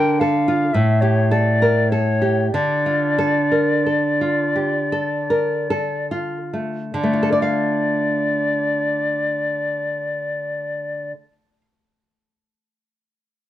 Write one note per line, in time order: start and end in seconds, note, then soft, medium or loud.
0.00 0.70 D3 medium
0.00 0.20 A#4 soft
0.00 0.21 G5 medium
0.20 0.63 A4 soft
0.20 0.75 F5 medium
0.48 0.74 F4 medium
0.73 2.48 A2 medium
0.73 1.03 E5 medium
1.01 1.48 G4 medium
1.01 1.33 C#5 medium
1.31 1.62 A4 medium
1.31 1.91 D5 medium
1.62 1.91 A#4 soft
1.90 2.40 A4 soft
1.90 2.51 C#5 medium
2.22 2.53 G4 soft
2.52 6.91 D3 medium
2.52 6.06 D5 medium
2.86 3.38 F4 soft
3.18 3.72 A4 soft
3.51 3.85 A#4 soft
3.86 4.41 A4 soft
4.21 4.78 F4 soft
4.56 4.92 G4 soft
4.92 5.53 A4 soft
5.30 5.69 A#4 soft
5.70 6.36 A4 soft
6.11 6.78 F4 soft
6.53 6.95 A3 soft
6.93 11.13 D3 medium
6.93 11.12 D5 soft
7.03 11.22 A3 soft
7.13 11.32 F4 soft
7.23 7.32 A4 soft
7.32 7.42 D5 soft
7.42 11.61 F5 soft